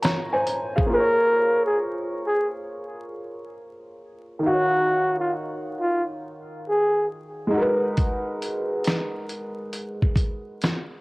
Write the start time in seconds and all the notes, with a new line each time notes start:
0.02 C#5 A#5, snare, closed hi-hat
0.33 C5 G#5
0.47 closed hi-hat
0.76 G#4 F5, kick
0.86 A#3 F4
0.93 G#4 A#4 C5
1.00 C#5
1.66 G#4
2.26 G#4
4.39 D#3 D#4
4.46 F#4 F5
4.53 C#5
5.20 F4
5.80 F4
6.69 G#4
7.47 G#3 D#4
7.54 F#4 A#4
7.61 B4
7.97 kick, closed hi-hat
8.42 closed hi-hat
8.84 snare, closed hi-hat
9.29 closed hi-hat
9.73 closed hi-hat
10.02 kick
10.16 kick, closed hi-hat
10.62 snare, closed hi-hat